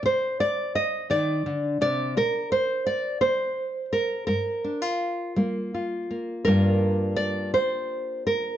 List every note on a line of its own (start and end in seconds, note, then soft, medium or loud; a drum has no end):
0.03 0.67 C3 medium
0.03 0.40 C5 medium
0.40 0.75 D5 medium
0.75 1.10 D#5 medium
1.10 1.45 D#3 medium
1.10 1.80 D5 medium
1.46 1.81 D3 medium
1.81 2.16 C3 medium
1.81 2.16 D5 loud
2.17 2.79 A#2 medium
2.17 2.51 A#4 medium
2.52 2.86 C5 medium
2.86 3.21 D5 medium
3.21 3.85 A#3 medium
3.21 3.92 C5 medium
3.93 4.26 A#4 medium
4.27 4.93 G2 medium
4.27 6.43 A#4 medium
4.64 4.82 D4 soft
4.82 5.73 F4 soft
5.36 6.02 G3 medium
5.36 6.09 A#3 soft
5.74 6.43 F4 soft
6.11 6.47 A#3 soft
6.45 7.56 G2 medium
6.45 8.57 A#3 soft
6.45 8.57 D4 soft
6.45 7.16 A#4 medium
6.49 8.57 F4 soft
7.16 7.53 D5 loud
7.54 8.26 C5 loud
7.54 muted nylon-string guitar stroke medium
8.27 8.57 A#4 medium